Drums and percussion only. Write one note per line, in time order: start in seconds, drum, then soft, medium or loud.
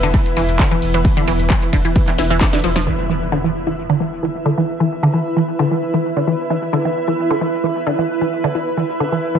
0.03 closed hi-hat medium
0.03 ride medium
0.03 tambourine soft
0.14 kick loud
0.14 closed hi-hat medium
0.14 ride medium
0.14 tambourine soft
0.26 closed hi-hat medium
0.26 ride medium
0.37 open hi-hat loud
0.37 ride medium
0.37 tambourine medium
0.49 closed hi-hat medium
0.49 ride medium
0.49 tambourine soft
0.59 kick loud
0.59 clap loud
0.59 closed hi-hat medium
0.59 ride medium
0.59 tambourine soft
0.72 closed hi-hat medium
0.72 ride medium
0.82 open hi-hat medium
0.82 ride medium
0.82 tambourine medium
0.94 closed hi-hat medium
0.94 ride medium
0.94 tambourine soft
1.05 kick loud
1.05 closed hi-hat medium
1.05 ride medium
1.05 tambourine soft
1.17 closed hi-hat medium
1.17 ride medium
1.17 tambourine soft
1.28 open hi-hat loud
1.28 ride medium
1.28 tambourine medium
1.40 closed hi-hat medium
1.40 ride medium
1.40 tambourine soft
1.50 kick loud
1.50 clap loud
1.50 closed hi-hat medium
1.50 ride medium
1.50 tambourine soft
1.62 closed hi-hat medium
1.62 ride medium
1.62 tambourine soft
1.73 kick medium
1.73 open hi-hat medium
1.73 ride medium
1.73 tambourine medium
1.85 closed hi-hat medium
1.85 ride medium
1.85 tambourine soft
1.96 kick loud
1.96 closed hi-hat medium
1.96 ride medium
1.96 tambourine soft
2.08 clap soft
2.08 closed hi-hat medium
2.08 ride medium
2.08 tambourine soft
2.18 snare medium
2.18 open hi-hat loud
2.18 ride medium
2.18 tambourine medium
2.30 closed hi-hat medium
2.30 ride medium
2.30 tambourine soft
2.41 kick loud
2.41 snare medium
2.41 clap loud
2.41 closed hi-hat medium
2.41 ride medium
2.41 tambourine soft
2.53 snare medium
2.53 closed hi-hat medium
2.53 ride medium
2.64 open hi-hat medium
2.64 ride medium
2.64 tambourine medium
2.76 snare medium
2.76 closed hi-hat medium
2.76 ride medium
2.76 tambourine soft